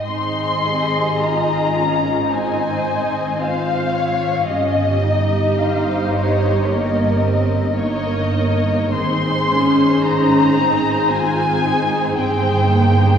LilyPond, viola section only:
\new Staff \with { instrumentName = "Viola section" } { \time 4/4 \key aes \major \tempo 4 = 55 << { ees'8 g'8 f'4 ees'8 ees'8 f'4 | g'2. ees'4 | ees'4 des'8 c'8 f'8 ees'8 ees'4 | } \\ { c'4 ees'8 des'8 c'4 c'4 | des'8 ees'4. bes8 c'8 bes4 | c'8 des'8 ees'4 c'4 c'8 bes8 | } >> }